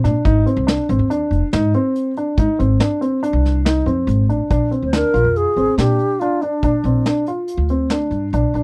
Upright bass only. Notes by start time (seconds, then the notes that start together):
0.04 A#2
0.25 G#1
0.56 C2
0.89 G#1
0.99 D#2
1.31 F1
1.53 G#2
2.37 G#2
2.60 G#1
3.33 C2
3.86 F2
4.07 G#1
4.29 A1
4.51 A#1
4.82 D2
5.14 A#1
5.24 F2
5.56 G1
5.78 A#2
6.63 A#2
6.84 A#1
7.57 D2
8.11 G2
8.33 A#1
8.54 A#1